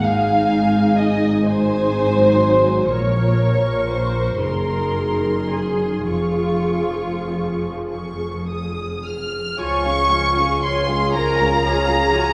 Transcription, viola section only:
0.04 G#3 D#4
1.45 G#3 D#4
2.18 F#3
2.90 F3 A#4
4.41 D#3 G#4
6.09 F3 G#4
9.58 F3 F4
9.86 G#3 C#4
10.11 F3 F4
10.37 G#3 C#4
10.63 F3 F4
10.89 G#3 C#4
11.14 F3 F4
11.39 G#3 C#4
11.64 F3 F4
11.89 G#3 C#4
12.12 F3 F4

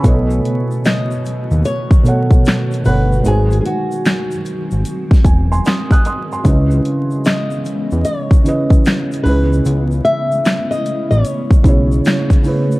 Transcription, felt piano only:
Already playing: G#5 B5
0.03 B2 B3 A4 C#5
0.08 D#5
2.03 B2 B3 A4 C#5
2.08 F#5
2.83 B2 B3 A4 C#5
2.88 F#5
3.23 G#3 D#4 F#4 C5
3.28 G#5
5.26 G#5
5.52 G#5 C6
5.66 C6 D#6
5.92 D#6 F#6
6.06 C6 D#6
6.32 G#5 C6
6.43 C#3 C#4 E4 B4
6.48 D#5
8.43 C#3 C#4 E4 B4
8.48 D#5
9.23 C#3 C#4 E4 G#4
9.28 B4
11.63 C#3 C#4 E4 G#4
11.68 C#5
12.43 C#3 C#4 E4 G#4
12.48 B4

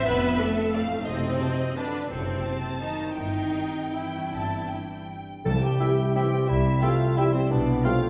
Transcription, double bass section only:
0.07 F1
1.08 F#1
2.11 F#1
3.18 G1
4.33 G1
5.46 C2
6.49 C2
7.51 B1

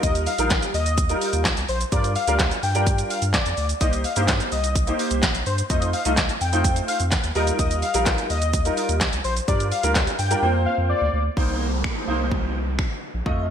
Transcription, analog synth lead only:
0.03 D#5
0.27 F5
0.74 D#5
1.69 C5
1.92 D5
2.16 F5
2.63 G5
3.10 F5
3.34 D5
3.81 D#5
4.05 F5
4.52 D#5
5.46 C5
5.70 D#5
5.93 F5
6.41 G5
6.88 F5
7.35 D#5
7.59 D#5
7.83 F5
8.30 D#5
9.24 C5
9.48 D5
9.72 F5
10.19 G5
10.66 F5
10.90 D5

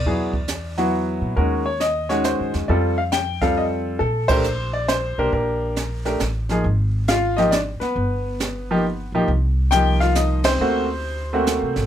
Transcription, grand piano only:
Already playing: D5
0.06 F#3 B3 E4 G#4
0.78 F#3 B3 E4 F#4
1.37 D#3 G#3 C#4 F#4 A#4
1.66 C#5
1.80 D#5
2.09 D#3 G#3 C#4 F#4 C#5
2.25 C5
2.68 G3 C4 F4 A4 D5
2.98 F5
3.12 G5
3.41 G3 C4 F4 A4 F5
3.57 D#5
3.99 A4
4.28 A3 D4 G4 A#4 C5
4.73 D5
4.88 C5
5.18 A#3 D4 G4 A#4
5.33 A#4
6.05 A3 D4 G4 A#4
6.50 F3 A#3 D#4 G#4
7.08 F4 F5
7.37 F3 A#3 D#4 G4 D#5
7.51 D4 D5
7.80 B3 B4
8.71 F3 A#3 D#4 G4
9.15 F3 A#3 D#4 G4
9.71 F3 A#3 D#4 G4 G5
10.00 F4 F5
10.16 D#4 D#5
10.45 C4 C5
10.61 A3 A#3 C4 F#4
11.33 A3 A#3 C4 F#4

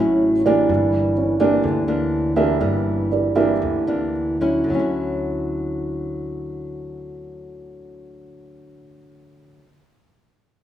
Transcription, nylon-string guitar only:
Already playing: A2
0.00 F#3 C#4 E4
0.46 E3 A#3 D4
0.69 G2
1.40 E3 A#3 D4
1.63 D3
1.88 E3 A#3 D4
2.36 E3 A#3 D4
2.60 G2 E3 A#3 D4
3.35 E3 A#3 D4
3.61 D3
3.87 E3 A#3 D4
4.41 F#3 C#4 E4
4.64 D3
4.70 F#3
4.75 C#4
4.79 E4

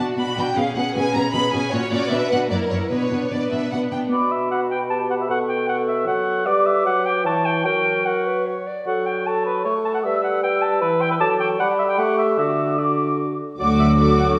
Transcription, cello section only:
0.16 B2
0.36 B2
0.55 B2
0.75 B2
0.94 B2
1.14 B2
1.33 B2
1.52 B2
1.72 A#2
1.91 A#2
2.11 B2
2.31 B2
2.51 F#2
2.70 F#2
2.91 B2
3.11 B2
3.31 B2
3.51 B2
3.71 B2
3.92 B2
13.60 D2

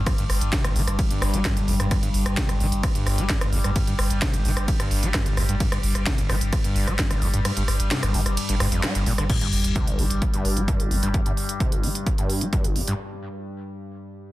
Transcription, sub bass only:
0.18 G1
0.30 G1
0.41 G1
0.64 G1
0.76 G1
0.87 G1
1.11 G1
1.22 G1
1.34 G1
1.57 G1
1.68 G1
1.80 G1
2.03 G1
2.14 G1
2.26 G1
2.49 G1
2.60 G1
2.72 G1
2.95 G1
3.06 G1
3.18 G1
3.41 G1
3.53 G1
3.64 G1
3.88 G1
3.99 G1
4.11 G1
4.34 G1
4.45 G1
4.57 G1
4.80 G1
4.91 G1
5.03 G1
5.26 G1
5.37 G1
5.49 G1
5.72 G1
5.83 G1
5.95 G1
6.18 G1
6.29 G1
6.41 G1
6.64 G1
6.76 G1
6.87 G1
7.11 G1
7.22 G1
7.34 G1
7.57 G1
7.68 G1
7.80 G1
8.03 G1
8.14 G1
8.26 G1
8.49 G1
8.60 G1
8.72 G1
8.95 G1
9.06 G1
9.18 G1
9.41 G1
9.53 G1
9.64 G1
9.87 G1
9.99 G1
10.10 G1
10.34 G1
10.45 G1
10.57 G1
10.80 G1
10.91 G1
11.03 G1

